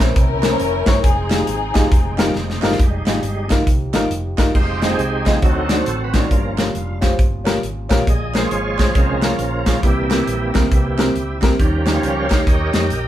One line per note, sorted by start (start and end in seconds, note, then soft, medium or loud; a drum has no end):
0.00 0.14 A#1 medium
0.00 2.76 C3 medium
0.00 1.03 E3 medium
0.00 1.01 A#3 medium
0.00 0.10 C#4 medium
0.00 0.13 C#4 medium
0.00 0.10 E4 medium
0.00 0.13 E4 medium
0.00 0.11 A#4 medium
0.00 0.17 C5 medium
0.00 0.11 C5 medium
0.00 2.76 G5 medium
0.00 kick medium
0.16 0.53 C2 loud
0.16 1.00 C#4 medium
0.16 1.00 E4 medium
0.16 1.00 A#4 loud
0.16 kick loud
0.16 closed hi-hat medium
0.42 0.54 C#4 medium
0.42 0.54 E4 medium
0.42 0.55 A#4 medium
0.42 0.55 C5 medium
0.42 snare loud
0.42 clap medium
0.42 closed hi-hat medium
0.60 0.83 F1 medium
0.60 closed hi-hat medium
0.86 1.01 G1 medium
0.86 0.97 C#4 medium
0.86 0.98 E4 medium
0.86 0.98 A#4 medium
0.86 0.98 C#5 loud
0.86 kick medium
0.86 snare loud
0.86 clap medium
0.86 closed hi-hat medium
1.03 1.41 F1 loud
1.03 2.78 F3 medium
1.03 2.78 G#3 medium
1.03 2.32 C4 medium
1.03 2.32 D#4 medium
1.03 2.78 D#4 medium
1.03 2.35 G#4 medium
1.03 kick loud
1.03 closed hi-hat medium
1.29 1.41 D#4 medium
1.29 1.41 F4 medium
1.29 1.41 G4 medium
1.29 1.42 G#4 medium
1.29 snare loud
1.29 clap medium
1.29 closed hi-hat medium
1.47 1.71 G#1 medium
1.47 closed hi-hat medium
1.73 1.89 G1 medium
1.73 1.85 D#4 medium
1.73 1.85 F4 medium
1.73 1.85 G4 medium
1.73 1.86 G#4 medium
1.73 kick medium
1.73 snare loud
1.73 clap medium
1.73 closed hi-hat medium
1.91 2.29 F1 medium
1.91 kick loud
1.91 closed hi-hat medium
2.17 2.29 D#4 medium
2.17 2.29 F4 medium
2.17 2.29 G4 medium
2.17 2.29 A#4 medium
2.17 snare loud
2.17 clap medium
2.17 closed hi-hat medium
2.35 2.59 F1 medium
2.35 snare medium
2.50 snare medium
2.62 2.77 G1 medium
2.62 2.73 D#4 medium
2.62 2.73 F4 medium
2.62 2.73 G4 medium
2.62 2.74 A#4 loud
2.62 snare medium
2.62 clap medium
2.71 snare medium
2.79 3.03 F1 loud
2.79 4.54 F3 medium
2.79 3.48 G3 soft
2.79 3.48 G#3 soft
2.79 4.54 D#4 medium
2.79 3.49 D#4 medium
2.79 4.52 F4 medium
2.79 4.54 G4 medium
2.79 kick loud
2.79 closed hi-hat loud
3.06 3.20 G#1 medium
3.06 3.17 D#4 medium
3.06 3.17 F4 medium
3.06 3.18 G4 medium
3.06 3.18 G#4 medium
3.06 snare loud
3.06 clap medium
3.06 closed hi-hat medium
3.23 3.60 G1 medium
3.23 closed hi-hat medium
3.50 3.61 D#4 medium
3.50 3.61 F4 medium
3.50 3.62 G4 medium
3.50 3.62 A#4 medium
3.50 kick medium
3.50 snare loud
3.50 clap medium
3.50 closed hi-hat medium
3.67 3.90 C2 medium
3.67 kick loud
3.67 closed hi-hat medium
3.94 4.09 G#1 medium
3.94 4.05 D#4 medium
3.94 4.05 F4 medium
3.94 4.05 G4 medium
3.94 4.06 A#4 medium
3.94 snare loud
3.94 clap medium
3.94 closed hi-hat medium
4.10 4.34 F1 medium
4.10 closed hi-hat medium
4.37 4.53 G1 medium
4.37 4.48 D#4 medium
4.37 4.49 F4 medium
4.37 4.49 G4 medium
4.37 4.49 A#4 medium
4.37 kick medium
4.37 snare loud
4.37 clap medium
4.37 closed hi-hat medium
4.54 4.93 F1 loud
4.54 5.42 G#3 medium
4.54 5.39 G#3 medium
4.54 6.29 C4 medium
4.54 4.90 C4 medium
4.54 4.90 D#4 medium
4.54 5.42 F4 medium
4.54 4.92 F4 medium
4.54 5.39 G4 soft
4.54 kick medium
4.54 crash medium
4.81 4.92 D#4 medium
4.81 4.93 F4 medium
4.81 4.93 G#4 medium
4.81 4.94 C5 medium
4.81 snare loud
4.81 clap medium
4.81 closed hi-hat medium
4.90 5.39 C4 medium
4.90 5.40 D#4 medium
4.90 5.39 G#4 loud
4.98 5.36 C2 medium
4.98 closed hi-hat medium
5.26 5.36 D#4 medium
5.26 5.37 F4 medium
5.26 5.37 G#4 medium
5.26 5.38 D#5 medium
5.26 kick medium
5.26 snare loud
5.26 clap medium
5.26 closed hi-hat medium
5.42 5.80 D2 loud
5.42 6.11 D3 medium
5.42 6.31 D3 medium
5.42 5.75 F#3 soft
5.42 6.30 F#3 medium
5.42 6.27 C4 medium
5.42 5.76 D#4 medium
5.42 6.28 F#4 medium
5.42 6.02 A4 medium
5.42 kick loud
5.42 closed hi-hat medium
5.69 5.81 D4 medium
5.69 5.81 D#4 medium
5.69 5.81 F#4 medium
5.69 5.82 C5 medium
5.69 snare loud
5.69 clap medium
5.69 closed hi-hat medium
5.86 6.24 A1 medium
5.86 closed hi-hat medium
6.04 6.14 B4 medium
6.14 6.31 C#4 medium
6.14 6.25 D4 medium
6.14 6.25 D#4 medium
6.14 6.98 F4 medium
6.14 6.25 F#4 medium
6.14 6.71 A#4 medium
6.14 6.26 D5 medium
6.14 kick medium
6.14 snare loud
6.14 clap medium
6.14 closed hi-hat medium
6.30 6.68 G1 medium
6.30 6.99 G2 medium
6.30 6.63 F3 soft
6.30 8.06 G3 medium
6.30 13.08 A#3 medium
6.30 6.64 A#3 soft
6.30 8.06 C#4 medium
6.30 6.64 C#4 soft
6.30 8.06 F4 medium
6.30 kick medium
6.30 closed hi-hat medium
6.57 6.68 C#4 medium
6.57 6.69 F4 medium
6.57 6.69 G4 soft
6.57 6.69 A#4 medium
6.57 snare loud
6.57 clap medium
6.57 closed hi-hat medium
6.75 7.13 F1 medium
6.75 closed hi-hat medium
7.01 7.12 C#4 medium
7.01 7.12 F4 medium
7.01 7.13 G4 medium
7.01 7.13 C5 medium
7.01 kick medium
7.01 snare medium
7.01 clap medium
7.01 closed hi-hat medium
7.19 7.57 G1 medium
7.19 kick loud
7.19 closed hi-hat medium
7.44 7.56 C#4 medium
7.44 7.56 F4 medium
7.44 7.57 G4 medium
7.44 7.57 A#4 medium
7.44 snare loud
7.44 clap medium
7.44 closed hi-hat medium
7.63 7.87 G#1 medium
7.63 closed hi-hat medium
7.89 8.05 A#1 medium
7.89 8.00 C#4 medium
7.89 8.01 F4 medium
7.89 8.01 G4 medium
7.89 8.01 A#4 medium
7.89 kick medium
7.89 snare loud
7.89 clap medium
7.89 closed hi-hat medium
8.06 8.45 A#1 loud
8.06 8.74 A#2 medium
8.06 9.82 G#3 medium
8.06 9.81 F4 medium
8.06 8.43 G#4 medium
8.06 8.39 D#5 medium
8.06 kick loud
8.06 closed hi-hat medium
8.34 9.80 F3 soft
8.34 8.94 G#3 soft
8.34 8.45 C#4 medium
8.34 8.45 F4 medium
8.34 8.45 G#4 soft
8.34 8.46 A#4 medium
8.34 8.44 C5 medium
8.34 snare loud
8.34 clap loud
8.34 closed hi-hat medium
8.44 8.95 F4 medium
8.44 9.28 G#4 medium
8.44 8.98 C#5 medium
8.51 8.89 G#1 medium
8.51 closed hi-hat medium
8.77 8.88 C#4 medium
8.77 8.89 F4 medium
8.77 8.89 G#4 medium
8.77 8.89 C5 medium
8.77 kick medium
8.77 snare loud
8.77 clap medium
8.77 closed hi-hat medium
8.94 9.33 C2 medium
8.94 9.20 C#3 soft
8.94 9.20 G#3 soft
8.94 9.20 C4 medium
8.94 9.39 C#4 medium
8.94 9.39 F4 medium
8.94 9.36 A#4 medium
8.94 kick loud
8.94 closed hi-hat medium
9.22 9.33 C#4 medium
9.22 9.33 F4 medium
9.22 9.34 G#4 medium
9.22 9.34 A#4 medium
9.22 snare loud
9.22 clap medium
9.22 closed hi-hat medium
9.37 9.76 A#1 medium
9.37 9.81 C#4 medium
9.37 9.81 F4 medium
9.37 9.79 A#4 medium
9.37 closed hi-hat medium
9.65 9.76 C#4 medium
9.65 9.77 F4 medium
9.65 9.77 G#4 medium
9.65 9.77 C#5 medium
9.65 kick medium
9.65 snare loud
9.65 clap medium
9.65 closed hi-hat medium
9.82 10.21 C2 loud
9.82 10.51 C3 medium
9.82 10.51 E3 soft
9.82 11.57 G3 medium
9.82 10.51 G3 soft
9.82 10.72 A#3 medium
9.82 11.57 C4 medium
9.82 11.57 E4 medium
9.82 11.39 E4 medium
9.82 11.38 G4 medium
9.82 kick medium
9.82 closed hi-hat medium
10.09 10.20 C4 medium
10.09 10.20 E4 medium
10.09 10.21 G4 medium
10.09 10.21 A#4 medium
10.09 snare loud
10.09 clap medium
10.09 closed hi-hat medium
10.27 10.50 A#1 medium
10.27 closed hi-hat medium
10.53 10.69 C#2 medium
10.53 10.64 C4 medium
10.53 10.65 E4 medium
10.53 10.65 G4 medium
10.53 10.65 A#4 medium
10.53 kick medium
10.53 snare loud
10.53 clap medium
10.53 closed hi-hat medium
10.71 11.09 C2 loud
10.71 10.97 E3 soft
10.71 10.97 G3 soft
10.71 10.97 A#3 soft
10.71 kick loud
10.71 closed hi-hat medium
10.98 11.09 C4 medium
10.98 11.09 E4 medium
10.98 11.09 G4 medium
10.98 11.10 A#4 medium
10.98 snare loud
10.98 clap medium
10.98 closed hi-hat medium
11.16 11.53 C#2 medium
11.16 closed hi-hat medium
11.41 11.52 C4 medium
11.41 11.53 E4 medium
11.41 11.53 G4 medium
11.41 11.54 A#4 medium
11.41 kick loud
11.41 snare loud
11.41 clap medium
11.41 closed hi-hat medium
11.59 11.97 D#2 loud
11.59 12.27 D#3 medium
11.59 12.27 F3 soft
11.59 12.27 G3 soft
11.59 13.08 G3 medium
11.59 12.27 C#4 medium
11.59 13.08 C#4 medium
11.59 13.08 D#4 medium
11.59 12.44 G4 medium
11.59 11.94 A#4 medium
11.59 kick medium
11.59 closed hi-hat medium
11.86 11.97 C#4 medium
11.86 11.97 D#4 medium
11.86 11.97 G4 medium
11.86 11.97 A#4 medium
11.86 snare loud
11.86 clap medium
11.86 closed hi-hat medium
11.95 12.46 A#4 medium
11.95 12.79 C#5 medium
11.95 12.43 F5 loud
12.03 12.41 C#2 medium
12.03 closed hi-hat medium
12.29 12.40 C#4 medium
12.29 12.41 D#4 medium
12.29 12.41 G4 medium
12.29 12.41 A#4 medium
12.29 kick medium
12.29 snare loud
12.29 clap medium
12.29 closed hi-hat medium
12.47 12.70 D#2 medium
12.47 12.74 G4 medium
12.47 12.74 A#4 medium
12.47 12.73 D#5 medium
12.47 kick loud
12.47 closed hi-hat medium
12.73 12.88 F2 medium
12.73 12.84 C#4 medium
12.73 12.84 D#4 medium
12.73 12.85 G4 medium
12.73 13.08 G4 medium
12.73 13.08 A#4 medium
12.73 12.85 C#5 medium
12.73 13.08 D#5 medium
12.73 snare loud
12.73 clap medium
12.73 closed hi-hat medium
12.90 13.08 A#1 medium
12.90 closed hi-hat medium